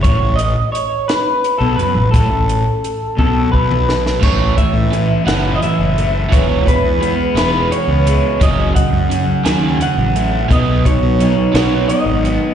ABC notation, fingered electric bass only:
X:1
M:6/8
L:1/16
Q:3/8=57
K:Alyd
V:1 name="Fingered electric bass" clef=bass
A,,, A,,,2 z6 B,,, F,, A,,, | A,,, A,,,2 z3 B,,,2 B,,,4 | A,,,2 z A,,2 z F,,,2 z F,,,3 | E,,,3 E,,2 z E,,,2 z C,,2 z |
F,,,2 z F,,2 z D,,2 z A,,,3 | B,,,3 B,,2 z B,,,2 z G,,,2 z |]